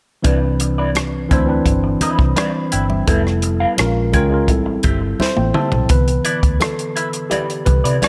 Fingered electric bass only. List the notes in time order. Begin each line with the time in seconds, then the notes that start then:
0.25 C2
1.31 D2
1.66 G1
2.19 C2
2.73 G1
3.08 F1
3.80 A#1
4.14 C#2
4.48 A1
4.85 G1
5.20 muted fingered electric bass stroke
5.37 A1
5.73 B1
5.90 C2
6.43 D2
7.67 C2
7.85 C3